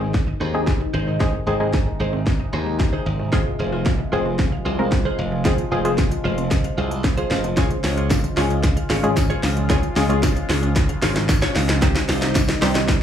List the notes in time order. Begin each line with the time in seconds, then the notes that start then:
Already playing: G#1 C3 D#3 G#3 C4 D#4 G#4
0.01 C4, muted clean electric guitar stroke
0.14 muted clean electric guitar stroke, kick, snare
0.27 D#5, muted clean electric guitar stroke
0.40 D#2 D#3 D#4 G#4 C5
0.54 G#3 C4 D#4 G#4, muted clean electric guitar stroke
0.67 C4, muted clean electric guitar stroke, kick, snare
0.81 D#4, muted clean electric guitar stroke
0.94 G#1 D#4 G#4 C5 D#5
1.07 D#3 D#4 G#4 C5
1.20 D#3 G#3 C4 D#4 G#4 C5, kick, snare
1.33 muted clean electric guitar stroke
1.47 G#1 G#3 C4 D#4 G#4 C5
1.60 G#3 C4 D#4 G#4 C5
1.73 D#5, muted clean electric guitar stroke, kick, snare
1.86 D#3, muted clean electric guitar stroke
2.00 G#1 G#3 D#4 G#4 C5
2.13 C4, muted clean electric guitar stroke
2.27 muted clean electric guitar stroke, kick, snare
2.40 D#5, muted clean electric guitar stroke
2.53 D#2 D#3 D#4 G#4 C5
2.66 G#3, muted clean electric guitar stroke
2.80 C4, muted clean electric guitar stroke, kick, snare
2.93 D#4 G#4 C5
3.06 G#1 D#5, muted clean electric guitar stroke
3.19 D#3, muted clean electric guitar stroke
3.33 F3 G#3 C4 F4 G#4 C5, kick, snare
3.46 muted clean electric guitar stroke
3.59 F1 F4 G#4 C5
3.72 F4 G#4 C5
3.86 F5, muted clean electric guitar stroke, kick, snare
3.99 F3, muted clean electric guitar stroke
4.12 F1 G#3 C4 F4 G#4 C5
4.26 C4, muted clean electric guitar stroke
4.39 muted clean electric guitar stroke, kick, snare
4.52 F5, muted clean electric guitar stroke
4.65 C2 F3 F4 G#4 C5
4.79 G#3 C4 F4 A#4
4.92 C4, muted clean electric guitar stroke, kick, snare
5.05 F4 G#4 C5
5.19 F1 F5
5.32 F3, muted clean electric guitar stroke
5.45 F3 G#3 C4 F4 G#4 C5, kick, snare, closed hi-hat
5.58 muted clean electric guitar stroke, closed hi-hat
5.71 F1 G#3 C4 F4 G#4 C5
5.85 G#3 C4 F4 G#4 C5, closed hi-hat
5.98 F5, kick, snare, closed hi-hat
6.11 F3, muted clean electric guitar stroke, closed hi-hat
6.24 F1 G#3 F4 G#4 C5
6.38 C4, muted clean electric guitar stroke, closed hi-hat
6.51 kick, snare, closed hi-hat
6.64 F5, muted clean electric guitar stroke, closed hi-hat
6.78 C2 F3 F4 G#4 C5
6.91 G#3, muted clean electric guitar stroke, closed hi-hat
7.04 C4, muted clean electric guitar stroke, kick, snare, closed hi-hat
7.17 F4 G#4 C5, closed hi-hat
7.31 F1 F4 G#4 C5 F5, snare
7.44 F3, muted clean electric guitar stroke, closed hi-hat
7.57 C#3 F3 G#3 C#4 F4 G#4 C#5, kick, snare, closed hi-hat
7.71 muted clean electric guitar stroke, closed hi-hat
7.84 C#2 F4 G#4 C#5, snare, open hi-hat
7.97 F4 G#4 C#5, closed hi-hat
8.10 F5, kick, snare, closed hi-hat, tambourine
8.24 F3, muted clean electric guitar stroke, closed hi-hat
8.37 C#2 G#3 C#4 F4 G#4 C#5, snare, open hi-hat
8.50 C#4, muted clean electric guitar stroke, closed hi-hat
8.63 muted clean electric guitar stroke, kick, snare, closed hi-hat
8.77 F5, muted clean electric guitar stroke, closed hi-hat
8.90 G#1 F3 F4 G#4 C#5, snare, open hi-hat
9.03 G#3 C#4 F4 G#4, muted clean electric guitar stroke, closed hi-hat
9.17 C#4, muted clean electric guitar stroke, kick, snare, closed hi-hat, tambourine
9.30 F4 G#4 C#5, closed hi-hat
9.43 C#2 F5, snare, open hi-hat
9.57 F3, muted clean electric guitar stroke, closed hi-hat
9.70 F3 G#3 C#4 F4 G#4 C#5, kick, snare, closed hi-hat
9.83 muted clean electric guitar stroke, closed hi-hat
9.96 C#2 G#3 C#4 F4 G#4 C#5, snare, open hi-hat
10.09 G#3 C#4 F4 G#4 C#5, closed hi-hat
10.23 F5, kick, snare, closed hi-hat, tambourine
10.36 F3, muted clean electric guitar stroke, closed hi-hat
10.49 C#2 G#3 F4 G#4 C#5, snare, open hi-hat
10.63 C#4, muted clean electric guitar stroke, closed hi-hat
10.76 muted clean electric guitar stroke, kick, snare, closed hi-hat
10.89 F5, muted clean electric guitar stroke, closed hi-hat
11.02 G#1 F3 F4 G#4 C#5, snare, open hi-hat
11.16 G#3, muted clean electric guitar stroke, snare, closed hi-hat
11.29 C#4, muted clean electric guitar stroke, kick, snare, closed hi-hat, tambourine
11.42 F4 G#4 C#5, snare, closed hi-hat
11.55 C#2 F5, muted clean electric guitar stroke, snare, open hi-hat
11.69 F3, muted clean electric guitar stroke, snare, closed hi-hat
11.82 C3 D#3 G3 C4 D#4 G4 C5, kick, snare, closed hi-hat
11.95 muted clean electric guitar stroke, snare, closed hi-hat
12.09 C2 D#4 G4 C5, snare, open hi-hat
12.22 D#4 G4 C5, snare, closed hi-hat
12.35 D#5, muted clean electric guitar stroke, kick, snare, closed hi-hat, tambourine
12.49 D#3, muted clean electric guitar stroke, snare, closed hi-hat
12.62 C2 G3 C4 D#4 G4 C5, snare, open hi-hat
12.75 C4, muted clean electric guitar stroke, snare, closed hi-hat
12.88 muted clean electric guitar stroke, kick, snare, closed hi-hat